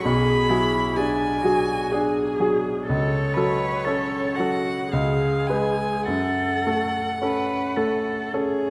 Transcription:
0.03 2.85 B1 medium
0.03 0.51 G#4 medium
0.03 0.97 B5 medium
0.50 0.93 F#3 soft
0.50 0.99 E4 medium
0.50 0.94 G#4 soft
0.96 1.44 D4 medium
0.96 1.41 D4 soft
0.96 1.41 G#4 soft
0.96 2.40 G#5 medium
1.43 1.88 F#3 soft
1.43 1.93 F#4 soft
1.43 1.89 G#4 soft
1.92 2.36 D4 soft
1.92 2.86 G#4 medium
1.92 2.36 G#4 soft
2.40 2.84 F#3 soft
2.40 2.84 G#4 soft
2.87 4.88 C#2 medium
2.87 3.35 A4 medium
2.87 4.38 C#5 medium
3.34 3.82 F#3 soft
3.34 3.82 A4 soft
3.34 3.87 B4 medium
3.85 4.34 C#4 soft
3.85 4.38 A4 medium
3.85 4.34 A4 soft
4.36 4.89 F#3 soft
4.36 4.89 F#4 soft
4.36 4.89 A4 soft
4.36 4.93 F#5 medium
4.90 6.04 C#2 medium
4.90 6.07 G#4 medium
4.90 5.49 F5 medium
5.47 6.03 G#3 soft
5.47 6.03 B4 soft
5.47 6.06 G#5 medium
6.06 8.70 F#2 soft
6.06 7.11 A4 medium
6.06 8.29 F#5 medium
6.67 7.19 A3 soft
6.67 7.19 A4 soft
7.22 7.73 C#4 soft
7.22 7.74 A4 soft
7.22 7.79 B4 medium
7.77 8.29 A3 soft
7.77 8.36 A4 soft
7.77 8.29 A4 soft
8.34 8.70 C#4 soft
8.34 8.70 G#4 medium
8.34 8.70 A4 soft

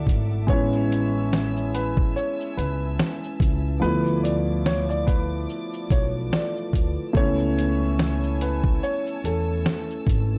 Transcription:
0.00 0.43 F#3 medium
0.00 0.44 A3 medium
0.00 0.50 E4 medium
0.00 3.78 E5 medium
0.00 0.45 F#5 medium
0.00 7.11 A5 medium
0.00 0.45 D6 medium
0.07 0.46 G#1 medium
0.07 kick medium
0.07 closed hi-hat medium
0.07 shaker soft
0.47 2.11 A1 loud
0.47 3.77 G#3 medium
0.47 3.78 B3 medium
0.47 3.79 C#4 medium
0.47 1.70 C#5 loud
0.47 3.78 G#5 medium
0.47 3.78 E6 medium
0.47 kick loud
0.47 shaker medium
0.53 3.80 E4 medium
0.73 shaker soft
0.92 closed hi-hat medium
0.92 shaker soft
1.32 snare loud
1.32 shaker medium
1.57 shaker soft
1.74 2.12 B4 medium
1.74 closed hi-hat medium
1.74 shaker soft
1.97 kick medium
2.16 2.53 C#5 medium
2.16 shaker medium
2.40 shaker soft
2.57 2.96 C#2 medium
2.57 3.18 B4 medium
2.57 closed hi-hat medium
2.57 shaker soft
2.99 snare loud
2.99 shaker medium
3.24 shaker soft
3.40 3.80 C#2 medium
3.40 kick medium
3.40 closed hi-hat medium
3.40 shaker soft
3.80 5.45 D2 loud
3.80 7.10 F3 medium
3.80 7.11 A3 medium
3.80 4.19 B4 loud
3.80 7.12 B4 medium
3.80 7.12 D5 medium
3.80 7.12 D6 medium
3.80 shaker medium
3.84 7.12 B3 medium
3.84 7.13 E4 medium
4.06 shaker soft
4.23 4.61 D5 medium
4.23 closed hi-hat medium
4.23 shaker soft
4.65 4.87 C#5 medium
4.65 snare loud
4.65 shaker medium
4.89 5.05 D5 medium
4.89 shaker soft
5.07 5.44 B4 medium
5.07 kick medium
5.07 closed hi-hat medium
5.07 shaker soft
5.49 shaker medium
5.73 shaker medium
5.90 6.30 B1 medium
5.90 6.12 C#5 medium
5.90 kick medium
5.90 closed hi-hat medium
5.90 shaker soft
6.33 6.70 D5 medium
6.33 snare loud
6.33 shaker medium
6.57 shaker soft
6.73 6.96 D2 medium
6.73 kick medium
6.73 closed hi-hat medium
6.73 shaker soft
7.13 8.78 C#2 loud
7.13 10.38 A3 medium
7.13 10.38 B3 medium
7.13 10.38 C#4 medium
7.13 10.38 C#5 medium
7.13 8.37 C#5 loud
7.13 10.38 G#5 medium
7.13 10.38 A5 medium
7.13 10.38 E6 medium
7.13 kick loud
7.13 shaker medium
7.19 10.38 E4 medium
7.39 shaker soft
7.58 closed hi-hat medium
7.58 shaker soft
7.99 snare loud
7.99 shaker medium
8.23 shaker medium
8.41 8.83 B4 medium
8.41 closed hi-hat medium
8.41 shaker soft
8.64 kick medium
8.83 9.20 C#5 medium
8.83 shaker medium
9.07 shaker medium
9.24 9.63 E2 medium
9.24 9.86 A4 medium
9.24 closed hi-hat medium
9.24 shaker soft
9.66 snare loud
9.66 shaker medium
9.90 shaker soft
10.07 10.38 G#1 medium
10.07 kick medium
10.07 closed hi-hat medium
10.07 shaker soft

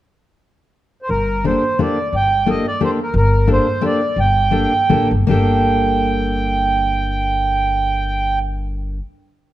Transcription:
1.02 1.10 C5 medium
1.09 1.54 G1 medium
1.09 1.45 A#4 medium
1.44 1.63 A#3 soft
1.44 1.63 D4 soft
1.44 1.63 G4 soft
1.44 1.63 A4 soft
1.44 1.81 C5 medium
1.79 1.97 A#3 soft
1.79 1.97 D4 soft
1.79 1.97 G4 soft
1.79 1.97 A4 medium
1.79 2.15 D5 medium
2.13 2.56 G1 medium
2.13 2.49 G5 medium
2.46 2.64 A#3 medium
2.46 2.65 D4 soft
2.46 2.65 G4 soft
2.46 2.65 A4 medium
2.46 2.67 D#5 medium
2.68 2.82 D5 medium
2.81 2.98 A#3 medium
2.81 2.98 D4 soft
2.81 2.98 G4 soft
2.81 2.98 A4 medium
2.81 2.91 C5 medium
3.02 3.15 A#4 medium
3.14 3.58 G1 medium
3.14 3.50 A#4 medium
3.47 3.66 A#3 medium
3.47 3.66 D4 soft
3.47 3.66 G4 soft
3.47 3.66 A4 medium
3.52 3.85 C5 medium
3.81 4.00 A#3 soft
3.81 4.00 D4 soft
3.81 4.00 G4 soft
3.81 4.00 A4 medium
3.86 4.19 D5 medium
4.16 4.64 G1 medium
4.16 5.08 G5 medium
4.51 4.72 A#3 soft
4.51 4.72 D4 soft
4.51 4.72 G4 soft
4.51 4.72 A4 soft
4.89 5.08 A1 medium
4.89 5.11 A#3 medium
4.89 5.11 D4 medium
4.89 5.11 G4 medium
4.89 5.11 A4 medium
5.11 5.27 G1 medium
5.27 8.98 G1 medium
5.27 8.96 A#3 medium
5.27 8.98 D4 medium
5.27 8.99 G4 medium
5.27 8.39 G5 medium
5.31 9.00 A4 medium

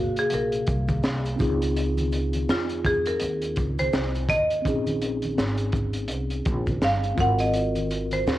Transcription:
0.00 0.14 G#1 medium
0.00 1.36 C3 medium
0.00 1.35 A#3 medium
0.00 0.19 F#4 medium
0.00 1.37 G#4 medium
0.00 1.36 F5 medium
0.16 0.25 G#4 medium
0.16 muted upright bass stroke soft
0.16 closed hi-hat medium
0.16 maracas soft
0.30 0.66 A#1 medium
0.30 closed hi-hat medium
0.30 maracas medium
0.34 2.10 A#4 medium
0.52 closed hi-hat medium
0.52 maracas soft
0.67 1.02 C2 medium
0.67 kick loud
0.67 closed hi-hat medium
0.67 maracas soft
0.88 kick loud
0.88 closed hi-hat soft
0.88 high conga medium
0.88 maracas soft
1.03 1.38 C2 medium
1.03 snare loud
1.03 maracas medium
1.25 closed hi-hat soft
1.25 maracas soft
1.36 4.23 C4 medium
1.36 4.24 D#4 medium
1.36 kick loud
1.36 low conga medium
1.36 maracas soft
1.40 2.45 C#2 loud
1.40 4.25 F4 medium
1.40 4.26 G#4 medium
1.40 closed hi-hat medium
1.62 closed hi-hat medium
1.62 maracas soft
1.76 closed hi-hat medium
1.76 maracas medium
1.97 closed hi-hat soft
1.97 high conga medium
1.97 maracas soft
2.12 closed hi-hat medium
2.12 maracas soft
2.33 closed hi-hat soft
2.33 high conga soft
2.33 maracas soft
2.49 3.17 F2 medium
2.49 2.83 F4 medium
2.49 snare medium
2.49 maracas medium
2.69 closed hi-hat soft
2.69 maracas soft
2.84 2.95 G#4 medium
2.84 kick loud
2.84 closed hi-hat medium
2.84 low conga medium
2.84 maracas soft
3.05 3.75 A#4 medium
3.05 closed hi-hat medium
3.05 maracas soft
3.19 3.55 D#2 medium
3.19 closed hi-hat medium
3.19 maracas medium
3.41 closed hi-hat medium
3.41 maracas soft
3.56 3.91 C#2 loud
3.56 kick loud
3.56 closed hi-hat medium
3.56 maracas soft
3.79 4.31 C5 medium
3.79 closed hi-hat soft
3.79 high conga medium
3.79 maracas soft
3.93 4.28 C2 medium
3.93 snare loud
3.93 maracas medium
4.15 closed hi-hat soft
4.15 maracas soft
4.29 4.63 D#2 medium
4.29 5.34 D#5 loud
4.29 kick loud
4.29 closed hi-hat medium
4.29 low conga medium
4.29 maracas soft
4.50 closed hi-hat medium
4.50 maracas soft
4.62 5.34 A#1 loud
4.62 7.13 C4 medium
4.62 7.14 C#4 medium
4.62 7.15 D#4 medium
4.62 kick loud
4.62 closed hi-hat medium
4.67 7.16 G#4 medium
4.67 maracas medium
4.87 closed hi-hat medium
4.87 high conga medium
4.87 maracas soft
5.02 closed hi-hat medium
5.02 maracas soft
5.22 closed hi-hat soft
5.22 high conga soft
5.22 maracas soft
5.38 6.10 G#1 medium
5.38 snare loud
5.38 maracas medium
5.58 closed hi-hat medium
5.58 maracas soft
5.72 kick loud
5.72 closed hi-hat medium
5.72 low conga medium
5.72 maracas soft
5.93 closed hi-hat medium
5.93 maracas soft
6.08 6.44 C2 loud
6.08 closed hi-hat medium
6.08 maracas medium
6.30 closed hi-hat medium
6.30 maracas soft
6.45 6.81 A#1 medium
6.45 kick loud
6.45 closed hi-hat medium
6.45 maracas soft
6.67 kick medium
6.67 closed hi-hat soft
6.67 high conga medium
6.67 maracas soft
6.82 7.17 G1 medium
6.82 7.21 F5 loud
6.82 snare medium
6.82 maracas medium
7.04 closed hi-hat soft
7.04 maracas soft
7.15 8.23 G#1 loud
7.15 8.38 C4 medium
7.15 8.38 F4 medium
7.15 8.38 F#4 medium
7.15 kick loud
7.15 closed hi-hat medium
7.15 low conga medium
7.15 maracas soft
7.21 8.38 A#4 medium
7.21 7.41 F#5 loud
7.39 8.14 D#5 loud
7.39 closed hi-hat medium
7.39 maracas soft
7.54 closed hi-hat medium
7.54 maracas medium
7.75 closed hi-hat medium
7.75 high conga medium
7.75 maracas soft
7.90 closed hi-hat medium
7.90 maracas soft
8.11 8.38 C5 medium
8.11 closed hi-hat medium
8.11 high conga soft
8.11 maracas soft
8.27 8.38 D#2 medium
8.27 snare loud
8.27 low conga medium
8.27 maracas medium

